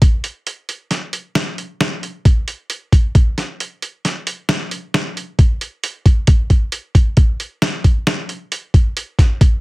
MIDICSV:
0, 0, Header, 1, 2, 480
1, 0, Start_track
1, 0, Tempo, 447427
1, 17, Time_signature, 7, 2, 24, 8
1, 10305, End_track
2, 0, Start_track
2, 0, Title_t, "Drums"
2, 18, Note_on_c, 9, 36, 103
2, 20, Note_on_c, 9, 42, 76
2, 126, Note_off_c, 9, 36, 0
2, 127, Note_off_c, 9, 42, 0
2, 256, Note_on_c, 9, 42, 53
2, 363, Note_off_c, 9, 42, 0
2, 501, Note_on_c, 9, 42, 80
2, 608, Note_off_c, 9, 42, 0
2, 738, Note_on_c, 9, 42, 50
2, 846, Note_off_c, 9, 42, 0
2, 974, Note_on_c, 9, 38, 27
2, 974, Note_on_c, 9, 42, 72
2, 1081, Note_off_c, 9, 38, 0
2, 1081, Note_off_c, 9, 42, 0
2, 1212, Note_on_c, 9, 42, 59
2, 1319, Note_off_c, 9, 42, 0
2, 1452, Note_on_c, 9, 38, 90
2, 1452, Note_on_c, 9, 42, 76
2, 1559, Note_off_c, 9, 38, 0
2, 1559, Note_off_c, 9, 42, 0
2, 1697, Note_on_c, 9, 42, 53
2, 1804, Note_off_c, 9, 42, 0
2, 1937, Note_on_c, 9, 38, 97
2, 1937, Note_on_c, 9, 42, 72
2, 2044, Note_off_c, 9, 38, 0
2, 2044, Note_off_c, 9, 42, 0
2, 2179, Note_on_c, 9, 42, 54
2, 2286, Note_off_c, 9, 42, 0
2, 2417, Note_on_c, 9, 36, 90
2, 2420, Note_on_c, 9, 42, 68
2, 2524, Note_off_c, 9, 36, 0
2, 2527, Note_off_c, 9, 42, 0
2, 2657, Note_on_c, 9, 42, 51
2, 2764, Note_off_c, 9, 42, 0
2, 2894, Note_on_c, 9, 42, 74
2, 3001, Note_off_c, 9, 42, 0
2, 3137, Note_on_c, 9, 36, 71
2, 3140, Note_on_c, 9, 42, 53
2, 3245, Note_off_c, 9, 36, 0
2, 3247, Note_off_c, 9, 42, 0
2, 3379, Note_on_c, 9, 36, 95
2, 3382, Note_on_c, 9, 42, 71
2, 3486, Note_off_c, 9, 36, 0
2, 3489, Note_off_c, 9, 42, 0
2, 3623, Note_on_c, 9, 38, 28
2, 3623, Note_on_c, 9, 42, 46
2, 3731, Note_off_c, 9, 38, 0
2, 3731, Note_off_c, 9, 42, 0
2, 3866, Note_on_c, 9, 42, 77
2, 3973, Note_off_c, 9, 42, 0
2, 4103, Note_on_c, 9, 42, 53
2, 4210, Note_off_c, 9, 42, 0
2, 4344, Note_on_c, 9, 38, 28
2, 4344, Note_on_c, 9, 42, 75
2, 4451, Note_off_c, 9, 38, 0
2, 4451, Note_off_c, 9, 42, 0
2, 4579, Note_on_c, 9, 42, 58
2, 4686, Note_off_c, 9, 42, 0
2, 4815, Note_on_c, 9, 38, 96
2, 4815, Note_on_c, 9, 42, 75
2, 4922, Note_off_c, 9, 38, 0
2, 4922, Note_off_c, 9, 42, 0
2, 5057, Note_on_c, 9, 42, 60
2, 5164, Note_off_c, 9, 42, 0
2, 5302, Note_on_c, 9, 38, 90
2, 5302, Note_on_c, 9, 42, 75
2, 5409, Note_off_c, 9, 38, 0
2, 5409, Note_off_c, 9, 42, 0
2, 5547, Note_on_c, 9, 42, 52
2, 5654, Note_off_c, 9, 42, 0
2, 5779, Note_on_c, 9, 36, 86
2, 5781, Note_on_c, 9, 42, 69
2, 5886, Note_off_c, 9, 36, 0
2, 5888, Note_off_c, 9, 42, 0
2, 6021, Note_on_c, 9, 42, 59
2, 6128, Note_off_c, 9, 42, 0
2, 6260, Note_on_c, 9, 42, 76
2, 6368, Note_off_c, 9, 42, 0
2, 6496, Note_on_c, 9, 36, 71
2, 6498, Note_on_c, 9, 42, 53
2, 6604, Note_off_c, 9, 36, 0
2, 6605, Note_off_c, 9, 42, 0
2, 6729, Note_on_c, 9, 42, 69
2, 6734, Note_on_c, 9, 36, 105
2, 6837, Note_off_c, 9, 42, 0
2, 6842, Note_off_c, 9, 36, 0
2, 6974, Note_on_c, 9, 36, 55
2, 6974, Note_on_c, 9, 42, 44
2, 7081, Note_off_c, 9, 36, 0
2, 7081, Note_off_c, 9, 42, 0
2, 7211, Note_on_c, 9, 42, 75
2, 7318, Note_off_c, 9, 42, 0
2, 7454, Note_on_c, 9, 36, 66
2, 7457, Note_on_c, 9, 42, 45
2, 7561, Note_off_c, 9, 36, 0
2, 7564, Note_off_c, 9, 42, 0
2, 7690, Note_on_c, 9, 42, 62
2, 7693, Note_on_c, 9, 36, 93
2, 7797, Note_off_c, 9, 42, 0
2, 7800, Note_off_c, 9, 36, 0
2, 7938, Note_on_c, 9, 42, 50
2, 8045, Note_off_c, 9, 42, 0
2, 8175, Note_on_c, 9, 38, 93
2, 8175, Note_on_c, 9, 42, 67
2, 8282, Note_off_c, 9, 38, 0
2, 8282, Note_off_c, 9, 42, 0
2, 8415, Note_on_c, 9, 36, 64
2, 8415, Note_on_c, 9, 42, 51
2, 8522, Note_off_c, 9, 36, 0
2, 8522, Note_off_c, 9, 42, 0
2, 8656, Note_on_c, 9, 38, 95
2, 8656, Note_on_c, 9, 42, 72
2, 8764, Note_off_c, 9, 38, 0
2, 8764, Note_off_c, 9, 42, 0
2, 8895, Note_on_c, 9, 42, 57
2, 9002, Note_off_c, 9, 42, 0
2, 9138, Note_on_c, 9, 42, 68
2, 9246, Note_off_c, 9, 42, 0
2, 9376, Note_on_c, 9, 36, 73
2, 9379, Note_on_c, 9, 42, 53
2, 9484, Note_off_c, 9, 36, 0
2, 9487, Note_off_c, 9, 42, 0
2, 9620, Note_on_c, 9, 42, 76
2, 9727, Note_off_c, 9, 42, 0
2, 9855, Note_on_c, 9, 36, 71
2, 9859, Note_on_c, 9, 38, 29
2, 9859, Note_on_c, 9, 42, 54
2, 9962, Note_off_c, 9, 36, 0
2, 9966, Note_off_c, 9, 38, 0
2, 9966, Note_off_c, 9, 42, 0
2, 10095, Note_on_c, 9, 36, 99
2, 10098, Note_on_c, 9, 42, 79
2, 10202, Note_off_c, 9, 36, 0
2, 10205, Note_off_c, 9, 42, 0
2, 10305, End_track
0, 0, End_of_file